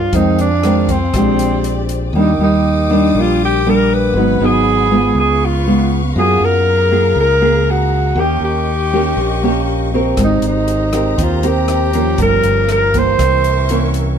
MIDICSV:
0, 0, Header, 1, 6, 480
1, 0, Start_track
1, 0, Key_signature, -3, "major"
1, 0, Tempo, 502092
1, 127, Time_signature, 4, 2, 24, 8
1, 13561, End_track
2, 0, Start_track
2, 0, Title_t, "String section"
2, 0, Program_c, 0, 48
2, 0, Note_on_c, 0, 70, 68
2, 0, Note_on_c, 0, 72, 81
2, 0, Note_on_c, 0, 74, 68
2, 106, Note_off_c, 0, 74, 0
2, 110, Note_off_c, 0, 72, 0
2, 113, Note_off_c, 0, 70, 0
2, 147, Note_on_c, 0, 68, 62
2, 151, Note_on_c, 0, 77, 75
2, 153, Note_on_c, 0, 65, 69
2, 1089, Note_off_c, 0, 68, 0
2, 1091, Note_off_c, 0, 77, 0
2, 1092, Note_off_c, 0, 65, 0
2, 1119, Note_on_c, 0, 60, 71
2, 1123, Note_on_c, 0, 74, 74
2, 1126, Note_on_c, 0, 67, 68
2, 2049, Note_off_c, 0, 67, 0
2, 2055, Note_off_c, 0, 60, 0
2, 2058, Note_off_c, 0, 74, 0
2, 2060, Note_on_c, 0, 67, 67
2, 2060, Note_on_c, 0, 87, 67
2, 2062, Note_on_c, 0, 86, 80
2, 3958, Note_off_c, 0, 67, 0
2, 3958, Note_off_c, 0, 87, 0
2, 3959, Note_off_c, 0, 86, 0
2, 3972, Note_on_c, 0, 68, 64
2, 3979, Note_on_c, 0, 83, 74
2, 3980, Note_on_c, 0, 78, 62
2, 4923, Note_off_c, 0, 68, 0
2, 4927, Note_off_c, 0, 78, 0
2, 4927, Note_off_c, 0, 83, 0
2, 4934, Note_on_c, 0, 71, 73
2, 4939, Note_on_c, 0, 77, 70
2, 4939, Note_on_c, 0, 85, 81
2, 5884, Note_off_c, 0, 71, 0
2, 5886, Note_off_c, 0, 85, 0
2, 5892, Note_on_c, 0, 68, 72
2, 5892, Note_on_c, 0, 82, 80
2, 7788, Note_off_c, 0, 77, 0
2, 7794, Note_off_c, 0, 68, 0
2, 7794, Note_off_c, 0, 82, 0
2, 7824, Note_on_c, 0, 75, 66
2, 7825, Note_on_c, 0, 85, 77
2, 7826, Note_on_c, 0, 67, 73
2, 9712, Note_off_c, 0, 67, 0
2, 9717, Note_on_c, 0, 82, 77
2, 9719, Note_off_c, 0, 75, 0
2, 9719, Note_off_c, 0, 85, 0
2, 9719, Note_on_c, 0, 72, 63
2, 9723, Note_on_c, 0, 67, 69
2, 11625, Note_off_c, 0, 72, 0
2, 11627, Note_off_c, 0, 67, 0
2, 11662, Note_on_c, 0, 67, 67
2, 11672, Note_on_c, 0, 77, 60
2, 12573, Note_off_c, 0, 82, 0
2, 12605, Note_off_c, 0, 67, 0
2, 12610, Note_off_c, 0, 77, 0
2, 12622, Note_on_c, 0, 76, 71
2, 12623, Note_on_c, 0, 70, 76
2, 12635, Note_on_c, 0, 85, 80
2, 13561, Note_off_c, 0, 70, 0
2, 13561, Note_off_c, 0, 76, 0
2, 13561, Note_off_c, 0, 85, 0
2, 13561, End_track
3, 0, Start_track
3, 0, Title_t, "Alto saxophone"
3, 0, Program_c, 1, 65
3, 0, Note_on_c, 1, 65, 92
3, 147, Note_on_c, 1, 63, 91
3, 162, Note_off_c, 1, 65, 0
3, 378, Note_off_c, 1, 63, 0
3, 393, Note_on_c, 1, 62, 88
3, 872, Note_on_c, 1, 60, 78
3, 887, Note_off_c, 1, 62, 0
3, 1822, Note_off_c, 1, 60, 0
3, 2082, Note_on_c, 1, 63, 83
3, 2290, Note_off_c, 1, 63, 0
3, 2329, Note_on_c, 1, 63, 80
3, 3064, Note_on_c, 1, 65, 86
3, 3078, Note_off_c, 1, 63, 0
3, 3277, Note_off_c, 1, 65, 0
3, 3298, Note_on_c, 1, 67, 89
3, 3534, Note_on_c, 1, 70, 89
3, 3548, Note_off_c, 1, 67, 0
3, 3761, Note_on_c, 1, 71, 99
3, 3776, Note_off_c, 1, 70, 0
3, 4250, Note_on_c, 1, 68, 93
3, 4264, Note_off_c, 1, 71, 0
3, 4951, Note_off_c, 1, 68, 0
3, 4970, Note_on_c, 1, 68, 82
3, 5216, Note_on_c, 1, 65, 79
3, 5230, Note_off_c, 1, 68, 0
3, 5675, Note_off_c, 1, 65, 0
3, 5915, Note_on_c, 1, 68, 96
3, 6161, Note_on_c, 1, 70, 99
3, 6175, Note_off_c, 1, 68, 0
3, 6867, Note_off_c, 1, 70, 0
3, 6885, Note_on_c, 1, 70, 101
3, 7366, Note_on_c, 1, 66, 85
3, 7380, Note_off_c, 1, 70, 0
3, 7835, Note_on_c, 1, 67, 86
3, 7849, Note_off_c, 1, 66, 0
3, 8064, Note_off_c, 1, 67, 0
3, 8074, Note_on_c, 1, 67, 83
3, 9465, Note_off_c, 1, 67, 0
3, 9793, Note_on_c, 1, 63, 85
3, 9988, Note_off_c, 1, 63, 0
3, 10017, Note_on_c, 1, 63, 84
3, 10731, Note_on_c, 1, 65, 83
3, 10746, Note_off_c, 1, 63, 0
3, 10966, Note_on_c, 1, 67, 90
3, 10980, Note_off_c, 1, 65, 0
3, 11668, Note_off_c, 1, 67, 0
3, 11686, Note_on_c, 1, 70, 105
3, 12115, Note_off_c, 1, 70, 0
3, 12161, Note_on_c, 1, 70, 99
3, 12410, Note_on_c, 1, 72, 104
3, 12425, Note_off_c, 1, 70, 0
3, 13348, Note_off_c, 1, 72, 0
3, 13561, End_track
4, 0, Start_track
4, 0, Title_t, "Nylon-string guitar"
4, 0, Program_c, 2, 24
4, 0, Note_on_c, 2, 43, 51
4, 104, Note_off_c, 2, 43, 0
4, 126, Note_on_c, 2, 41, 52
4, 130, Note_on_c, 2, 51, 53
4, 132, Note_on_c, 2, 56, 52
4, 136, Note_on_c, 2, 60, 59
4, 437, Note_off_c, 2, 51, 0
4, 439, Note_off_c, 2, 56, 0
4, 439, Note_off_c, 2, 60, 0
4, 612, Note_on_c, 2, 51, 55
4, 616, Note_on_c, 2, 56, 53
4, 616, Note_on_c, 2, 60, 55
4, 920, Note_off_c, 2, 51, 0
4, 921, Note_off_c, 2, 56, 0
4, 922, Note_off_c, 2, 60, 0
4, 1065, Note_off_c, 2, 41, 0
4, 1105, Note_on_c, 2, 56, 50
4, 1109, Note_on_c, 2, 46, 49
4, 1113, Note_on_c, 2, 62, 51
4, 1115, Note_on_c, 2, 67, 56
4, 2020, Note_off_c, 2, 56, 0
4, 2023, Note_off_c, 2, 62, 0
4, 2025, Note_off_c, 2, 67, 0
4, 2036, Note_off_c, 2, 46, 0
4, 2056, Note_on_c, 2, 51, 52
4, 2059, Note_on_c, 2, 55, 52
4, 2061, Note_on_c, 2, 58, 50
4, 2067, Note_on_c, 2, 62, 61
4, 2196, Note_off_c, 2, 55, 0
4, 2196, Note_off_c, 2, 58, 0
4, 2200, Note_off_c, 2, 62, 0
4, 2297, Note_on_c, 2, 55, 53
4, 2298, Note_on_c, 2, 58, 55
4, 2735, Note_off_c, 2, 58, 0
4, 2736, Note_off_c, 2, 55, 0
4, 2770, Note_on_c, 2, 55, 57
4, 2774, Note_on_c, 2, 58, 56
4, 2779, Note_on_c, 2, 62, 62
4, 2990, Note_off_c, 2, 51, 0
4, 3022, Note_on_c, 2, 46, 47
4, 3453, Note_off_c, 2, 55, 0
4, 3455, Note_off_c, 2, 58, 0
4, 3456, Note_off_c, 2, 62, 0
4, 3499, Note_on_c, 2, 58, 55
4, 3500, Note_on_c, 2, 55, 53
4, 3506, Note_on_c, 2, 62, 59
4, 3953, Note_off_c, 2, 46, 0
4, 3956, Note_off_c, 2, 58, 0
4, 3957, Note_off_c, 2, 55, 0
4, 3960, Note_off_c, 2, 62, 0
4, 3978, Note_on_c, 2, 44, 55
4, 3983, Note_on_c, 2, 54, 48
4, 3986, Note_on_c, 2, 59, 50
4, 3993, Note_on_c, 2, 63, 59
4, 4179, Note_off_c, 2, 54, 0
4, 4181, Note_off_c, 2, 59, 0
4, 4182, Note_off_c, 2, 63, 0
4, 4213, Note_on_c, 2, 54, 55
4, 4218, Note_on_c, 2, 59, 59
4, 4226, Note_on_c, 2, 63, 65
4, 4654, Note_off_c, 2, 54, 0
4, 4657, Note_off_c, 2, 59, 0
4, 4661, Note_off_c, 2, 63, 0
4, 4692, Note_on_c, 2, 56, 58
4, 4698, Note_on_c, 2, 59, 56
4, 4702, Note_on_c, 2, 65, 65
4, 4912, Note_off_c, 2, 44, 0
4, 4946, Note_on_c, 2, 49, 49
4, 5375, Note_off_c, 2, 56, 0
4, 5376, Note_off_c, 2, 59, 0
4, 5379, Note_off_c, 2, 65, 0
4, 5422, Note_on_c, 2, 56, 53
4, 5422, Note_on_c, 2, 59, 52
4, 5430, Note_on_c, 2, 65, 62
4, 5740, Note_off_c, 2, 59, 0
4, 5741, Note_off_c, 2, 56, 0
4, 5742, Note_off_c, 2, 65, 0
4, 5876, Note_off_c, 2, 49, 0
4, 5901, Note_on_c, 2, 54, 52
4, 5904, Note_on_c, 2, 58, 56
4, 5905, Note_on_c, 2, 65, 55
4, 5912, Note_on_c, 2, 68, 58
4, 6580, Note_off_c, 2, 58, 0
4, 6581, Note_off_c, 2, 65, 0
4, 6585, Note_off_c, 2, 68, 0
4, 6610, Note_on_c, 2, 58, 59
4, 6615, Note_on_c, 2, 65, 63
4, 6619, Note_on_c, 2, 68, 68
4, 6833, Note_off_c, 2, 54, 0
4, 6853, Note_on_c, 2, 49, 51
4, 7053, Note_off_c, 2, 58, 0
4, 7056, Note_off_c, 2, 65, 0
4, 7057, Note_off_c, 2, 68, 0
4, 7091, Note_on_c, 2, 58, 63
4, 7096, Note_on_c, 2, 68, 67
4, 7774, Note_off_c, 2, 58, 0
4, 7775, Note_off_c, 2, 68, 0
4, 7789, Note_off_c, 2, 49, 0
4, 7806, Note_on_c, 2, 51, 52
4, 7810, Note_on_c, 2, 58, 52
4, 7812, Note_on_c, 2, 61, 53
4, 7818, Note_on_c, 2, 67, 56
4, 8288, Note_off_c, 2, 58, 0
4, 8290, Note_off_c, 2, 61, 0
4, 8293, Note_off_c, 2, 67, 0
4, 8537, Note_on_c, 2, 58, 56
4, 8541, Note_on_c, 2, 61, 53
4, 8542, Note_on_c, 2, 67, 60
4, 8746, Note_off_c, 2, 51, 0
4, 8786, Note_on_c, 2, 46, 50
4, 8977, Note_off_c, 2, 58, 0
4, 8977, Note_off_c, 2, 61, 0
4, 8979, Note_off_c, 2, 67, 0
4, 9016, Note_on_c, 2, 58, 65
4, 9022, Note_on_c, 2, 61, 64
4, 9026, Note_on_c, 2, 67, 65
4, 9456, Note_off_c, 2, 58, 0
4, 9459, Note_off_c, 2, 61, 0
4, 9460, Note_off_c, 2, 67, 0
4, 9501, Note_on_c, 2, 60, 59
4, 9505, Note_on_c, 2, 67, 52
4, 9513, Note_on_c, 2, 70, 62
4, 9715, Note_off_c, 2, 46, 0
4, 9734, Note_on_c, 2, 56, 51
4, 10418, Note_off_c, 2, 60, 0
4, 10420, Note_off_c, 2, 67, 0
4, 10424, Note_off_c, 2, 70, 0
4, 10447, Note_on_c, 2, 60, 63
4, 10454, Note_on_c, 2, 67, 54
4, 10457, Note_on_c, 2, 70, 60
4, 10668, Note_off_c, 2, 56, 0
4, 10685, Note_on_c, 2, 51, 51
4, 10891, Note_off_c, 2, 60, 0
4, 10893, Note_off_c, 2, 67, 0
4, 10896, Note_off_c, 2, 70, 0
4, 10930, Note_on_c, 2, 60, 59
4, 10935, Note_on_c, 2, 67, 60
4, 10941, Note_on_c, 2, 70, 68
4, 11372, Note_off_c, 2, 60, 0
4, 11374, Note_off_c, 2, 67, 0
4, 11376, Note_off_c, 2, 70, 0
4, 11416, Note_on_c, 2, 53, 62
4, 11421, Note_on_c, 2, 58, 61
4, 11423, Note_on_c, 2, 61, 66
4, 11623, Note_off_c, 2, 51, 0
4, 11651, Note_on_c, 2, 43, 53
4, 12334, Note_off_c, 2, 53, 0
4, 12335, Note_off_c, 2, 58, 0
4, 12337, Note_off_c, 2, 61, 0
4, 12371, Note_on_c, 2, 52, 58
4, 12377, Note_on_c, 2, 58, 56
4, 12585, Note_off_c, 2, 43, 0
4, 12608, Note_on_c, 2, 48, 52
4, 13051, Note_off_c, 2, 52, 0
4, 13053, Note_off_c, 2, 58, 0
4, 13097, Note_on_c, 2, 52, 54
4, 13104, Note_on_c, 2, 58, 53
4, 13106, Note_on_c, 2, 61, 64
4, 13535, Note_off_c, 2, 52, 0
4, 13536, Note_off_c, 2, 58, 0
4, 13538, Note_off_c, 2, 61, 0
4, 13543, Note_off_c, 2, 48, 0
4, 13561, End_track
5, 0, Start_track
5, 0, Title_t, "Fingered electric bass"
5, 0, Program_c, 3, 33
5, 119, Note_on_c, 3, 41, 94
5, 1046, Note_off_c, 3, 41, 0
5, 1086, Note_on_c, 3, 34, 85
5, 2010, Note_off_c, 3, 34, 0
5, 2036, Note_on_c, 3, 39, 97
5, 2266, Note_off_c, 3, 39, 0
5, 2278, Note_on_c, 3, 39, 73
5, 2967, Note_off_c, 3, 39, 0
5, 3009, Note_on_c, 3, 34, 87
5, 3932, Note_off_c, 3, 34, 0
5, 3954, Note_on_c, 3, 32, 98
5, 4186, Note_off_c, 3, 32, 0
5, 4203, Note_on_c, 3, 32, 72
5, 4890, Note_off_c, 3, 32, 0
5, 4921, Note_on_c, 3, 37, 87
5, 5849, Note_off_c, 3, 37, 0
5, 5887, Note_on_c, 3, 42, 100
5, 6113, Note_off_c, 3, 42, 0
5, 6124, Note_on_c, 3, 42, 78
5, 6811, Note_off_c, 3, 42, 0
5, 6840, Note_on_c, 3, 37, 88
5, 7769, Note_off_c, 3, 37, 0
5, 7796, Note_on_c, 3, 39, 97
5, 8027, Note_off_c, 3, 39, 0
5, 8036, Note_on_c, 3, 39, 67
5, 8726, Note_off_c, 3, 39, 0
5, 8763, Note_on_c, 3, 34, 83
5, 9689, Note_off_c, 3, 34, 0
5, 9721, Note_on_c, 3, 32, 96
5, 9950, Note_off_c, 3, 32, 0
5, 9959, Note_on_c, 3, 32, 70
5, 10647, Note_off_c, 3, 32, 0
5, 10687, Note_on_c, 3, 39, 81
5, 11610, Note_off_c, 3, 39, 0
5, 11644, Note_on_c, 3, 31, 100
5, 11870, Note_off_c, 3, 31, 0
5, 11890, Note_on_c, 3, 31, 70
5, 12571, Note_off_c, 3, 31, 0
5, 12608, Note_on_c, 3, 36, 81
5, 13529, Note_off_c, 3, 36, 0
5, 13561, End_track
6, 0, Start_track
6, 0, Title_t, "Drums"
6, 122, Note_on_c, 9, 42, 53
6, 123, Note_on_c, 9, 36, 58
6, 218, Note_off_c, 9, 36, 0
6, 218, Note_off_c, 9, 42, 0
6, 368, Note_on_c, 9, 42, 37
6, 464, Note_off_c, 9, 42, 0
6, 606, Note_on_c, 9, 37, 54
6, 606, Note_on_c, 9, 42, 38
6, 702, Note_off_c, 9, 37, 0
6, 702, Note_off_c, 9, 42, 0
6, 847, Note_on_c, 9, 36, 53
6, 849, Note_on_c, 9, 42, 41
6, 942, Note_off_c, 9, 36, 0
6, 944, Note_off_c, 9, 42, 0
6, 1086, Note_on_c, 9, 37, 60
6, 1086, Note_on_c, 9, 42, 54
6, 1088, Note_on_c, 9, 36, 58
6, 1182, Note_off_c, 9, 37, 0
6, 1182, Note_off_c, 9, 42, 0
6, 1183, Note_off_c, 9, 36, 0
6, 1330, Note_on_c, 9, 42, 43
6, 1425, Note_off_c, 9, 42, 0
6, 1569, Note_on_c, 9, 42, 44
6, 1664, Note_off_c, 9, 42, 0
6, 1807, Note_on_c, 9, 42, 44
6, 1902, Note_off_c, 9, 42, 0
6, 9725, Note_on_c, 9, 37, 57
6, 9725, Note_on_c, 9, 42, 57
6, 9727, Note_on_c, 9, 36, 59
6, 9820, Note_off_c, 9, 37, 0
6, 9820, Note_off_c, 9, 42, 0
6, 9822, Note_off_c, 9, 36, 0
6, 9963, Note_on_c, 9, 42, 44
6, 10058, Note_off_c, 9, 42, 0
6, 10207, Note_on_c, 9, 42, 41
6, 10303, Note_off_c, 9, 42, 0
6, 10446, Note_on_c, 9, 37, 58
6, 10446, Note_on_c, 9, 42, 44
6, 10542, Note_off_c, 9, 37, 0
6, 10542, Note_off_c, 9, 42, 0
6, 10690, Note_on_c, 9, 36, 57
6, 10693, Note_on_c, 9, 42, 59
6, 10785, Note_off_c, 9, 36, 0
6, 10788, Note_off_c, 9, 42, 0
6, 10929, Note_on_c, 9, 42, 41
6, 11024, Note_off_c, 9, 42, 0
6, 11167, Note_on_c, 9, 37, 58
6, 11167, Note_on_c, 9, 42, 43
6, 11262, Note_off_c, 9, 37, 0
6, 11262, Note_off_c, 9, 42, 0
6, 11409, Note_on_c, 9, 42, 41
6, 11505, Note_off_c, 9, 42, 0
6, 11645, Note_on_c, 9, 42, 54
6, 11648, Note_on_c, 9, 36, 60
6, 11741, Note_off_c, 9, 42, 0
6, 11744, Note_off_c, 9, 36, 0
6, 11886, Note_on_c, 9, 42, 39
6, 11982, Note_off_c, 9, 42, 0
6, 12127, Note_on_c, 9, 37, 58
6, 12127, Note_on_c, 9, 42, 39
6, 12223, Note_off_c, 9, 37, 0
6, 12223, Note_off_c, 9, 42, 0
6, 12370, Note_on_c, 9, 36, 55
6, 12371, Note_on_c, 9, 42, 39
6, 12466, Note_off_c, 9, 36, 0
6, 12466, Note_off_c, 9, 42, 0
6, 12609, Note_on_c, 9, 36, 59
6, 12611, Note_on_c, 9, 37, 58
6, 12611, Note_on_c, 9, 42, 53
6, 12705, Note_off_c, 9, 36, 0
6, 12706, Note_off_c, 9, 37, 0
6, 12706, Note_off_c, 9, 42, 0
6, 12851, Note_on_c, 9, 42, 38
6, 12947, Note_off_c, 9, 42, 0
6, 13087, Note_on_c, 9, 42, 43
6, 13183, Note_off_c, 9, 42, 0
6, 13326, Note_on_c, 9, 42, 40
6, 13422, Note_off_c, 9, 42, 0
6, 13561, End_track
0, 0, End_of_file